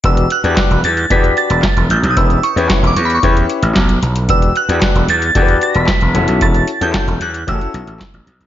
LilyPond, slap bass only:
\new Staff \with { instrumentName = "Slap bass" } { \clef bass \time 4/4 \key e \dorian \tempo 4 = 113 e,,8 r16 e,16 r16 e,,16 e,8 e,8 r16 e,,16 r16 e,,16 a,,16 b,,16 | e,,8 r16 e,16 r16 e,,16 e,8 e,8 r16 a,,16 b,,8 b,,8 | e,,8 r16 e,16 r16 e,,16 e,8 e,8 r16 e,,16 r16 e,,16 e,,16 b,,16 | e,,8 r16 e,16 r16 e,,16 e,8 a,,16 r16 b,,16 a,,16 r16 a,,16 b,,16 b,,16 | }